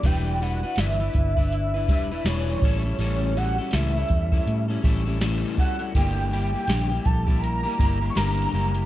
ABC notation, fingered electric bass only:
X:1
M:4/4
L:1/8
Q:"Swing 16ths" 1/4=81
K:Amix
V:1 name="Fingered electric bass" clef=bass
E,,,2 G,,, G,,,2 E,,, E,,, A,,, | A,,,2 C,, E,, A,, A,,,2 z | G,,,2 _B,,, B,,,2 G,,, G,,, F,,, |]